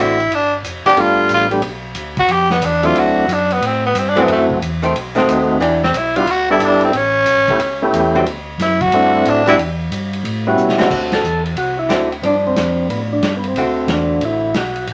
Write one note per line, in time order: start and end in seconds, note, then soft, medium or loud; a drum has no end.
0.00 0.29 A1 medium
0.00 0.17 D3 medium
0.00 0.17 A3 medium
0.00 0.17 C4 medium
0.00 0.36 E4 medium
0.00 0.17 F#4 medium
0.20 ride soft
0.29 0.62 G1 medium
0.29 ride medium
0.34 0.54 D4 medium
0.63 0.83 F1 loud
0.63 hi-hat pedal medium
0.63 ride medium
0.84 0.90 F1 soft
0.84 0.96 F3 medium
0.84 0.96 B3 medium
0.84 0.96 D4 medium
0.84 1.02 G4 loud
0.84 ride medium
0.96 1.29 G1 medium
0.96 1.47 G3 medium
0.96 1.47 A3 medium
0.96 1.47 B3 medium
0.96 1.47 D4 medium
0.96 1.48 F4 medium
0.96 ride medium
1.01 1.32 F4 loud
1.29 1.62 A1 medium
1.29 hi-hat pedal medium
1.29 ride medium
1.34 1.46 F4 medium
1.51 1.62 G3 medium
1.51 1.62 A3 medium
1.51 1.62 B3 medium
1.51 1.62 D4 medium
1.51 1.62 G4 loud
1.51 ride soft
1.62 1.95 B1 medium
1.62 ride medium
1.95 2.28 D2 loud
1.95 hi-hat pedal soft
1.95 ride medium
2.17 2.34 F#4 loud
2.17 kick medium
2.17 ride soft
2.28 2.61 F2 medium
2.28 2.51 G4 loud
2.28 ride medium
2.50 2.67 B3 medium
2.50 snare medium
2.61 2.94 E2 medium
2.61 hi-hat pedal medium
2.61 ride medium
2.65 2.87 D4 medium
2.83 3.26 F#3 medium
2.83 3.26 A3 medium
2.83 3.26 C4 medium
2.83 3.27 D4 medium
2.83 3.26 E4 medium
2.83 3.00 F4 loud
2.83 ride medium
2.94 3.27 D2 medium
2.94 ride medium
2.99 3.34 F#4 loud
3.27 3.60 F#2 loud
3.27 hi-hat pedal medium
3.27 ride medium
3.32 3.54 D4 medium
3.50 3.67 B3 medium
3.50 ride medium
3.61 3.94 A2 medium
3.61 ride medium
3.66 3.85 C4 medium
3.86 4.00 B3 medium
3.94 4.27 G2 medium
3.94 hi-hat pedal medium
3.94 ride medium
3.98 4.11 C4 medium
4.09 4.23 D4 loud
4.16 4.59 E3 medium
4.16 4.59 F#3 medium
4.16 4.59 A3 medium
4.16 4.59 C4 medium
4.16 4.60 C4 medium
4.16 4.59 E4 medium
4.16 4.59 F#4 medium
4.16 ride soft
4.22 4.31 B3 medium
4.28 4.60 F#2 medium
4.28 ride medium
4.32 4.44 A3 medium
4.50 kick medium
4.61 4.93 E2 loud
4.61 hi-hat pedal soft
4.61 ride medium
4.82 4.93 D#3 medium
4.82 4.94 A3 medium
4.82 4.94 C4 medium
4.82 ride soft
4.94 5.26 B1 medium
4.94 ride medium
5.15 5.58 D#3 medium
5.15 5.59 A3 medium
5.15 5.59 C4 medium
5.15 5.59 D#4 medium
5.15 5.59 F#4 loud
5.15 snare soft
5.27 5.59 D#2 medium
5.27 hi-hat pedal medium
5.27 ride medium
5.60 5.93 E2 medium
5.60 5.80 E3 medium
5.60 5.80 B3 medium
5.60 5.80 D4 medium
5.60 5.80 G4 medium
5.60 ride medium
5.84 5.98 C4 medium
5.84 snare medium
5.93 6.26 B1 loud
5.93 6.18 E4 medium
5.93 hi-hat pedal medium
5.93 ride medium
6.16 6.26 G3 medium
6.16 6.26 B3 medium
6.16 6.27 D4 medium
6.16 6.27 E4 medium
6.16 6.32 F4 loud
6.16 6.27 F#4 medium
6.16 ride medium
6.26 6.59 D2 medium
6.26 ride medium
6.30 6.50 F#4 loud
6.50 6.92 G3 medium
6.50 6.92 B3 medium
6.50 6.92 D4 medium
6.50 6.92 E4 medium
6.50 6.66 E4 medium
6.50 6.92 A4 medium
6.60 6.93 G1 medium
6.60 hi-hat pedal medium
6.60 ride medium
6.65 6.83 D4 medium
6.81 6.98 C4 medium
6.81 ride medium
6.93 7.26 A1 medium
6.93 7.94 C#4 loud
6.93 ride medium
7.26 7.38 B1 loud
7.26 hi-hat pedal medium
7.26 ride medium
7.37 7.48 A1 medium
7.48 7.59 G1 medium
7.48 7.59 A3 medium
7.48 7.60 B3 medium
7.48 7.60 C#4 medium
7.48 7.60 E4 medium
7.48 7.60 G4 medium
7.48 kick medium
7.48 ride medium
7.58 7.91 C#2 medium
7.58 ride medium
7.82 8.24 A3 medium
7.82 8.24 B3 medium
7.82 8.24 C#4 medium
7.82 8.25 E4 medium
7.82 8.25 G4 medium
7.92 8.25 E2 loud
7.92 hi-hat pedal medium
7.92 ride medium
8.15 8.25 D3 medium
8.15 8.26 A3 medium
8.15 8.25 C4 medium
8.15 8.26 F#4 medium
8.25 8.58 D2 loud
8.25 ride medium
8.58 8.91 F#2 loud
8.58 snare soft
8.58 hi-hat pedal medium
8.58 ride medium
8.62 8.82 E4 medium
8.81 9.30 F#4 loud
8.81 kick medium
8.81 ride medium
8.92 9.24 G2 medium
8.92 9.43 A3 medium
8.92 9.43 C4 medium
8.92 9.43 D4 medium
8.92 9.43 E4 medium
8.92 9.43 F#4 medium
8.92 ride medium
9.24 9.57 A2 medium
9.24 hi-hat pedal medium
9.24 ride medium
9.29 9.47 D4 medium
9.46 9.58 E3 medium
9.46 9.57 G3 medium
9.46 9.57 B3 medium
9.46 9.57 D4 medium
9.46 9.58 D4 medium
9.46 9.58 E4 medium
9.46 9.55 E4 loud
9.46 9.57 F#4 medium
9.46 9.58 G4 medium
9.46 9.58 B4 medium
9.46 ride medium
9.57 9.90 E2 loud
9.57 ride medium
9.91 10.23 G2 loud
9.91 hi-hat pedal medium
9.91 ride medium
10.13 ride medium
10.23 10.56 A2 medium
10.23 ride medium
10.47 10.89 G3 medium
10.47 10.89 B3 medium
10.47 10.89 C#4 medium
10.47 10.89 E4 medium
10.47 10.89 F#4 medium
10.57 10.89 B2 loud
10.57 hi-hat pedal medium
10.69 snare medium
10.78 11.21 D3 medium
10.78 11.21 A3 medium
10.78 11.22 C4 medium
10.78 11.22 F#4 medium
10.78 snare medium
10.90 11.23 D2 medium
10.90 11.01 F#4 medium
10.90 kick medium
10.90 crash medium
11.12 11.44 A4 loud
11.12 snare medium
11.12 ride medium
11.23 11.55 E2 loud
11.23 hi-hat pedal soft
11.45 ride soft
11.56 11.89 C2 medium
11.56 11.77 F#4 medium
11.56 ride medium
11.79 12.10 E4 medium
11.89 12.22 D2 medium
11.89 12.09 D3 medium
11.89 12.09 A3 medium
11.89 12.09 C4 medium
11.89 12.10 F#4 medium
11.89 snare medium
11.89 hi-hat pedal medium
11.89 ride medium
12.12 ride soft
12.23 12.55 G2 medium
12.23 13.16 F3 medium
12.23 12.25 C4 medium
12.23 13.16 D4 medium
12.23 12.35 D4 medium
12.23 ride medium
12.47 12.56 C4 medium
12.56 12.89 F2 loud
12.56 12.88 C4 medium
12.56 snare medium
12.56 hi-hat pedal medium
12.56 ride medium
12.88 13.21 A2 medium
12.88 13.00 B3 medium
12.88 ride medium
13.13 13.34 D4 medium
13.22 13.54 G2 medium
13.22 snare medium
13.22 hi-hat pedal medium
13.22 ride medium
13.37 13.45 B3 medium
13.44 ride soft
13.48 13.92 C4 medium
13.54 13.87 D2 medium
13.54 14.49 D3 medium
13.54 14.49 A3 medium
13.54 14.49 C4 medium
13.54 ride medium
13.59 14.50 F#4 medium
13.87 14.20 E2 loud
13.87 snare medium
13.87 hi-hat pedal soft
13.87 ride medium
13.92 14.24 D4 medium
14.21 14.54 A1 medium
14.21 14.54 E4 medium
14.21 ride medium
14.54 14.87 B1 medium
14.54 14.88 F#4 medium
14.54 snare medium
14.54 hi-hat pedal medium
14.54 ride medium
14.76 ride soft
14.87 14.93 A1 medium
14.87 ride medium